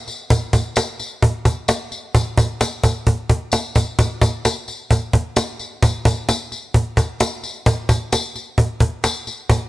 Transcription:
0.08 cajon slap, tambourine
0.30 cajon bass, tambourine
0.53 cajon bass, tambourine
0.76 cajon slap, tambourine
0.99 cajon slap, tambourine
1.22 cajon bass
1.45 cajon bass, cajon slap, tambourine
1.68 cajon slap, tambourine
1.91 cajon slap, tambourine
2.15 cajon bass, tambourine
2.38 cajon bass, tambourine
2.61 cajon slap, tambourine
2.84 cajon bass, tambourine
3.07 cajon bass
3.30 cajon bass, cajon slap
3.52 cajon slap, tambourine
3.75 cajon bass, tambourine
3.99 cajon bass, tambourine
4.21 cajon bass, tambourine
4.45 cajon slap, tambourine
4.68 cajon slap, tambourine
4.91 cajon bass, tambourine
5.13 cajon bass, cajon slap
5.36 cajon slap, tambourine
5.59 cajon slap, tambourine
5.83 cajon bass, tambourine
6.05 cajon bass, tambourine
6.29 cajon slap, tambourine
6.52 cajon slap, tambourine
6.74 cajon bass
6.97 cajon bass, cajon slap, tambourine
7.20 cajon slap, tambourine
7.43 cajon slap, tambourine
7.66 cajon bass, tambourine
7.89 cajon bass, tambourine
8.12 cajon slap, tambourine
8.35 cajon slap, tambourine
8.58 cajon bass
8.80 cajon bass, cajon slap
9.04 cajon slap, tambourine
9.27 cajon slap, tambourine
9.50 cajon bass, tambourine

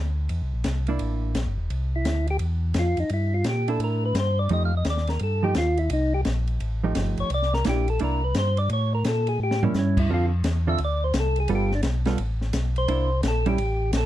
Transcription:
Already playing: D2
0.29 E2, ride
0.42 C2
0.53 A#1
0.64 C2, snare, hi-hat pedal, ride
0.87 A#3 D4 E4, ride
0.99 A1, ride
1.35 A#1, snare, hi-hat pedal, ride
1.46 G1
1.58 E1
1.70 C2, ride
1.96 E4
2.04 D2, snare, hi-hat pedal, ride
2.27 G4, ride
2.39 E2, ride
2.74 F2, snare, hi-hat pedal, ride
2.79 F4
2.97 F2 D#4, ride
3.09 G2, ride
3.14 E4
3.34 F4
3.44 A#2, snare, hi-hat pedal, ride
3.49 G4
3.68 D4 E4 A4, ride
3.79 A2, ride
3.84 A#4
4.05 B4
4.14 G2, snare, hi-hat pedal, ride
4.20 C5
4.39 D5
4.49 F2 F3 A3 D#4 G4, ride
4.53 D#5
4.65 F5
4.77 D#5
4.85 D#2, snare, hi-hat pedal, ride
4.90 D5
4.97 snare
5.07 A#4, snare, ride
5.19 G2 A4, ride
5.43 F3 A3 D#4 G4
5.55 D#2 F4, snare, hi-hat pedal, ride
5.77 E4, ride
5.90 C2 D#4, ride
6.14 G4
6.25 A#1, snare, hi-hat pedal, ride
6.47 ride
6.60 A1, ride
6.83 F3 A3 D#4 G4
6.95 G1, snare, hi-hat pedal, ride
7.17 G1 C#5, ride
7.30 C2, ride
7.34 D5
7.42 snare
7.54 A#4, snare
7.65 A#1 A#3 D4 E4, snare, hi-hat pedal, ride
7.69 G4
7.88 A4, ride
7.99 C2 A#3 D4 E4, ride
8.04 A#4
8.24 B4
8.35 G2, snare, hi-hat pedal, ride
8.39 C5
8.57 D5, ride
8.70 A2 C#5, ride
8.95 A#4
9.04 A#2 A4, snare, hi-hat pedal, ride
9.27 G#4, ride
9.40 A2 G4
9.51 snare
9.63 G3 A#3 C#4 E4, floor tom
9.74 G2, snare, hi-hat pedal
9.79 C#4
9.97 E4, kick, crash
10.09 F2 D3 C4 F4 A4
10.14 F4
10.44 E2, snare, hi-hat pedal, ride
10.67 D3 C4 F4 A4 E5
10.78 D2, ride
10.85 D5
11.04 C5
11.14 C2, snare, hi-hat pedal, ride
11.20 A4
11.36 ride
11.40 G#4
11.48 G1 G3 B3 F4 A4, ride
11.55 G4
11.72 D4, snare
11.83 B1, snare, hi-hat pedal, ride
12.05 G3 B3 F4 A4, snare, ride
12.18 A1, ride
12.41 snare
12.53 B1, snare, hi-hat pedal, ride
12.76 C5, ride
12.88 C2 A#3 D4 E4, ride
13.23 A#1, snare, hi-hat pedal, ride
13.28 A4
13.46 G3 C#4 E4 G4, ride
13.58 A1, ride
13.93 A#1, snare, hi-hat pedal, ride
13.97 A4

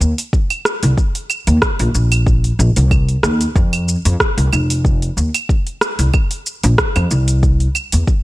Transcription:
0.00 D#2, shaker
0.18 open hi-hat, shaker
0.33 kick, shaker
0.50 open hi-hat, claves
0.65 cross-stick, shaker
0.83 C2, open hi-hat, shaker
0.97 kick, shaker
1.15 open hi-hat
1.30 claves, shaker
1.47 D#2, open hi-hat, shaker
1.62 kick, cross-stick, shaker
1.79 A#1, open hi-hat
1.95 A#1, shaker
2.12 open hi-hat, claves, shaker
2.27 kick, shaker
2.44 open hi-hat
2.59 A#1, shaker
2.76 C2, open hi-hat, shaker
2.91 kick, claves, shaker
3.09 open hi-hat
3.23 D#2, cross-stick, shaker
3.41 open hi-hat, shaker
3.56 F2, kick, shaker
3.73 open hi-hat, claves
3.88 shaker
4.05 F2, open hi-hat, shaker
4.20 kick, cross-stick, shaker
4.37 C2, open hi-hat
4.53 F1, claves, shaker
4.70 open hi-hat, shaker
4.85 kick, shaker
5.02 open hi-hat
5.17 D#2, shaker
5.34 open hi-hat, claves, shaker
5.49 kick, shaker
5.67 open hi-hat
5.81 cross-stick, shaker
5.99 C2, open hi-hat, shaker
6.14 kick, claves, shaker
6.31 open hi-hat
6.46 shaker
6.63 A#1, open hi-hat, shaker
6.78 kick, cross-stick, shaker
6.96 F2, open hi-hat, claves
7.11 C2, shaker
7.28 open hi-hat, shaker
7.43 kick, shaker
7.60 open hi-hat
7.75 claves, shaker
7.92 E2, open hi-hat, shaker
8.07 kick, shaker

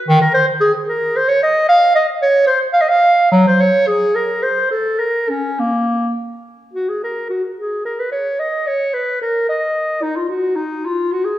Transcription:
0.08 D#3
0.22 A#4
0.34 C5
0.61 G#4
0.88 A#4
1.16 C5
1.28 C#5
1.43 D#5
1.69 F5
1.95 D#5
2.22 C#5
2.47 C5
2.73 F5
2.81 D#5
2.89 F5
3.32 F#3
3.47 C5
3.60 C#5
3.88 G#4
4.16 A#4
4.43 C5
4.71 A4
4.99 A#4
5.29 C#4
5.60 A#3
6.73 F#4
6.89 G#4
7.03 A#4
7.30 F#4
7.57 G#4
7.85 A#4
7.99 B4
8.12 C#5
8.40 D#5
8.67 C#5
8.94 B4
9.22 A#4
9.49 D#5
10.02 D#4
10.16 F4
10.29 F#4
10.56 D#4
10.86 F4
11.12 F#4
11.25 G#4

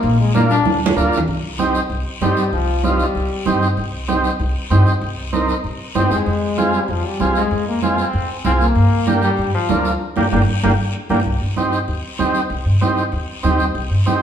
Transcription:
Already playing: A#3
0.03 A#1, high conga, long guiro
0.20 G#3
0.34 A#3 D4 F4, high conga, short guiro
0.50 D4, short guiro
0.65 D2, high conga, long guiro
0.86 high conga
0.96 D2 A#3 D4 F4, short guiro
1.12 short guiro
1.17 low conga
1.27 C2, high conga, long guiro
1.59 C4 D#4 G4, high conga, short guiro
1.75 short guiro
1.90 C2, high conga, long guiro
2.21 G2 G3 C4 D#4 G4, high conga, short guiro
2.37 short guiro
2.52 C2 F3, high conga, long guiro
2.84 G3 C4 D#4 F4, high conga, short guiro
2.99 short guiro
3.15 C2, high conga, long guiro
3.46 G2 C4 D#4 G4, high conga, short guiro
3.62 short guiro
3.77 C2, high conga, long guiro
4.08 C4 D#4 G4, high conga, short guiro
4.24 short guiro
4.40 C2, high conga, long guiro
4.70 G2 C4 D#4 G4, high conga, short guiro
4.86 short guiro
5.01 C2, high conga, long guiro
5.33 C4 D#4 A#4, high conga, short guiro
5.48 short guiro
5.64 C2, high conga, long guiro
5.95 G2 C4 D#4 G4, high conga, short guiro
6.11 F2 G#3, short guiro
6.26 F2, high conga, long guiro
6.58 C4 F4 G#4, high conga, short guiro
6.73 G3, short guiro
6.88 F2 F3, high conga, long guiro
7.05 G3
7.19 C2 C4 F4 G#4, high conga, short guiro
7.35 G#3, short guiro
7.51 F2, high conga, long guiro
7.68 A#3
7.82 G#3 C4 F4 G#4, high conga, short guiro
7.98 C4, short guiro
8.13 F2, high conga, long guiro
8.44 C2 C4 F4 G#4, high conga, short guiro
8.60 A#3, short guiro
8.75 G2, high conga, long guiro
9.06 A#3 D4 G4, high conga, short guiro
9.22 G3, short guiro
9.37 G2, high conga, long guiro
9.54 F3
9.69 D2 A#3 D4 F4, high conga, short guiro
9.85 short guiro
10.16 G1 A#3 D4 G4, high conga, long guiro
10.32 G1 A#3 D4 G4, high conga, long guiro
10.63 G1 A#3 D4 G4, high conga, long guiro
11.09 G1 A#3 D4 G4, high conga, long guiro
11.25 C2, high conga, long guiro
11.41 G2
11.56 C4 D#4 G4, high conga, short guiro
11.72 short guiro
11.88 D#2, high conga, long guiro
12.19 D#2 C4 D#4 G4, high conga, short guiro
12.34 short guiro
12.50 C2, high conga, long guiro
12.65 G2
12.81 C4 D#4 G4, high conga, short guiro
12.97 short guiro
13.12 D#2, high conga, long guiro
13.43 D#2 C4 D#4 G4, high conga, short guiro
13.59 short guiro
13.75 C2, high conga, long guiro
13.90 G2
14.06 C4 D#4 G4, high conga, short guiro

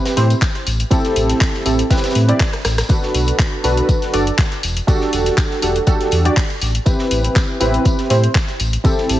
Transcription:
Already playing: C4 E4 G4 B4
0.05 snare, closed hi-hat, tambourine
0.17 A2 C4 E4 G4 C5, snare, open hi-hat
0.30 closed hi-hat, tambourine
0.42 kick, snare, clap, closed hi-hat, tambourine
0.55 snare, closed hi-hat
0.67 A1, open hi-hat, tambourine
0.80 closed hi-hat
0.91 C4 E4 G4 A4, kick, closed hi-hat, tambourine
1.05 snare, closed hi-hat
1.16 A1, open hi-hat, tambourine
1.29 snare, closed hi-hat
1.40 kick, snare, clap, closed hi-hat, tambourine
1.54 snare
1.65 A1 C4 E4 G4 A4, open hi-hat, tambourine
1.79 closed hi-hat
1.90 C4 E4 G4 B4, kick, snare, closed hi-hat, tambourine
1.97 snare, tambourine
2.04 snare, closed hi-hat, tambourine
2.10 snare, tambourine
2.15 A2, open hi-hat
2.28 C4 E4 G4 D5, closed hi-hat
2.40 kick, cross-stick, snare, clap, closed hi-hat, open hi-hat
2.53 cross-stick, closed hi-hat
2.65 A1, cross-stick, snare, open hi-hat, tambourine
2.78 cross-stick, snare, closed hi-hat, tambourine
2.89 D4 F#4 A4 B4, kick, closed hi-hat, tambourine
3.03 snare
3.14 B1, open hi-hat, tambourine
3.28 closed hi-hat
3.39 kick, snare, clap, closed hi-hat, tambourine
3.64 B1 D4 F#4 A4 B4, open hi-hat, tambourine
3.77 closed hi-hat
3.89 kick, closed hi-hat, tambourine
4.02 snare, closed hi-hat
4.13 F#1 D4 F#4 A4 D5, open hi-hat, tambourine
4.27 closed hi-hat
4.38 kick, snare, clap, closed hi-hat, tambourine
4.52 snare, closed hi-hat
4.63 E1, open hi-hat, tambourine
4.77 closed hi-hat
4.87 D4 F#4 G4 A4, kick, closed hi-hat, tambourine
5.01 snare
5.13 E1, open hi-hat, tambourine
5.26 snare, closed hi-hat
5.37 kick, snare, clap, closed hi-hat, tambourine
5.51 snare
5.62 E1 D4 F#4 G4 A4, open hi-hat, tambourine
5.76 closed hi-hat
5.87 D4 F#4 G4 A4, kick, closed hi-hat, tambourine
6.00 snare, closed hi-hat
6.11 E2, open hi-hat, tambourine
6.25 D4 F#4 G4 D5, closed hi-hat
6.37 kick, snare, clap, closed hi-hat, open hi-hat
6.50 closed hi-hat
6.61 A1, open hi-hat, tambourine
6.75 closed hi-hat
6.86 C4 E4 G4 B4, kick, closed hi-hat, tambourine
6.99 snare
7.11 A1, open hi-hat, tambourine
7.24 closed hi-hat
7.36 kick, snare, clap, closed hi-hat, tambourine
7.60 A1 C4 E4 G4 B4, open hi-hat, tambourine
7.74 closed hi-hat
7.85 kick, closed hi-hat, tambourine
7.98 snare, closed hi-hat
8.10 A2 C4 E4 G4 C5, open hi-hat, tambourine
8.24 closed hi-hat
8.35 kick, snare, clap, closed hi-hat, tambourine
8.48 snare, closed hi-hat
8.60 A1, open hi-hat, tambourine
8.73 closed hi-hat
8.84 C4 E4 G4 A4, kick, closed hi-hat, tambourine
8.98 snare
9.09 A1, open hi-hat, tambourine

